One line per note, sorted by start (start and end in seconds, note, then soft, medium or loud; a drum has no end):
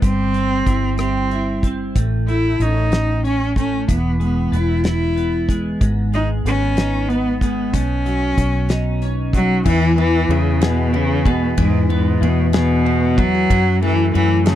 0.02 0.63 G1 medium
0.02 1.95 G3 medium
0.02 0.96 C4 loud
0.02 kick medium
0.02 closed hi-hat medium
0.34 1.63 C4 soft
0.34 closed hi-hat soft
0.66 1.92 G1 medium
0.66 1.32 E4 soft
0.66 kick medium
0.66 closed hi-hat medium
0.98 1.68 C4 medium
0.98 2.03 G4 medium
0.98 cross-stick medium
0.98 closed hi-hat medium
1.31 2.61 E4 soft
1.31 closed hi-hat soft
1.63 2.03 C4 soft
1.63 kick medium
1.63 closed hi-hat medium
1.96 2.56 A1 medium
1.96 3.89 A2 medium
1.96 kick medium
1.96 closed hi-hat medium
2.28 3.56 A3 soft
2.28 2.63 E4 medium
2.28 closed hi-hat soft
2.60 3.85 A1 medium
2.60 3.23 C#4 soft
2.60 3.25 D#4 medium
2.60 closed hi-hat medium
2.92 snare medium
2.92 closed hi-hat medium
3.24 3.95 C#4 soft
3.24 3.55 C#4 medium
3.24 closed hi-hat soft
3.56 3.95 A3 soft
3.56 3.88 C#4 medium
3.56 kick medium
3.56 closed hi-hat medium
3.88 4.49 E1 medium
3.88 5.81 E3 medium
3.88 4.20 B3 medium
3.88 kick medium
3.88 closed hi-hat medium
4.20 5.49 G#3 soft
4.20 4.57 B3 medium
4.20 closed hi-hat soft
4.52 5.77 E1 medium
4.52 5.16 B3 soft
4.52 4.87 E4 medium
4.52 closed hi-hat medium
4.84 5.87 E4 medium
4.84 snare medium
4.84 closed hi-hat medium
4.88 5.55 E4 medium
5.16 6.46 B3 soft
5.16 closed hi-hat soft
5.49 5.88 G#3 medium
5.49 kick medium
5.49 closed hi-hat medium
5.81 6.42 G#1 medium
5.81 7.74 G#2 medium
5.81 kick medium
5.81 closed hi-hat medium
6.13 7.41 G#3 medium
6.13 6.29 D#4 medium
6.13 closed hi-hat soft
6.45 7.70 G#1 loud
6.45 7.10 B3 medium
6.45 7.10 C#4 medium
6.45 closed hi-hat medium
6.77 7.81 D#4 medium
6.77 snare medium
6.77 closed hi-hat medium
7.09 7.40 B3 medium
7.09 8.37 B3 medium
7.09 closed hi-hat soft
7.41 7.81 G#3 medium
7.41 7.75 B3 medium
7.41 kick medium
7.41 closed hi-hat medium
7.73 8.34 B1 medium
7.73 9.67 B2 medium
7.73 9.02 C#4 medium
7.73 kick loud
7.73 closed hi-hat medium
8.06 9.33 F#3 medium
8.06 closed hi-hat soft
8.38 9.62 B1 medium
8.38 9.01 C#4 medium
8.38 kick medium
8.38 closed hi-hat medium
8.69 9.72 D#4 medium
8.69 snare loud
8.69 closed hi-hat medium
9.02 9.73 C#4 soft
9.02 closed hi-hat soft
9.33 9.73 F#3 medium
9.33 9.64 F#3 medium
9.33 kick medium
9.33 closed hi-hat medium
9.65 10.26 E2 medium
9.65 11.57 E3 medium
9.65 9.97 E3 loud
9.65 kick loud
9.65 crash loud
9.98 10.32 E3 loud
9.98 10.93 B3 medium
9.98 10.60 B3 medium
9.98 ride soft
10.29 11.54 E2 loud
10.29 10.64 C#3 medium
10.29 12.21 G#3 medium
10.29 12.20 E4 medium
10.29 ride medium
10.61 10.97 B2 medium
10.61 11.25 B3 medium
10.61 11.25 G#4 medium
10.61 snare loud
10.61 ride medium
10.93 11.28 C#3 loud
10.93 11.88 B3 medium
10.93 12.84 E4 medium
10.93 ride soft
11.25 11.59 B2 medium
11.25 11.89 B3 medium
11.25 12.52 G#4 medium
11.25 kick loud
11.25 ride medium
11.58 12.18 E2 loud
11.58 11.89 G#2 loud
11.58 13.50 E3 medium
11.58 kick loud
11.58 ride medium
11.89 12.25 G#2 medium
11.89 12.84 B3 medium
11.89 12.52 B3 medium
11.89 ride soft
12.21 13.46 E2 loud
12.21 12.54 B2 medium
12.21 13.57 G#3 medium
12.21 13.56 E4 medium
12.21 ride medium
12.53 13.20 B2 loud
12.53 13.17 B3 medium
12.53 13.17 G#4 medium
12.53 snare loud
12.53 ride medium
12.86 13.56 B3 medium
12.86 13.56 E4 medium
12.86 ride soft
13.18 13.83 F#3 loud
13.18 13.57 B3 medium
13.18 13.35 F#4 medium
13.18 kick loud
13.18 ride medium
13.35 13.57 G#4 medium
13.50 14.55 F#2 medium
13.50 14.11 F#2 loud
13.50 14.55 F#3 medium
13.50 kick loud
13.50 ride medium
13.82 14.13 E3 loud
13.82 14.55 A3 medium
13.82 14.46 A3 medium
13.82 ride soft
14.14 14.55 F#2 loud
14.14 14.45 E3 loud
14.14 14.55 F#3 medium
14.14 14.55 C#4 medium
14.14 ride medium
14.46 14.55 C#3 loud
14.46 14.55 A3 medium
14.46 14.55 A4 medium
14.46 snare loud
14.46 ride medium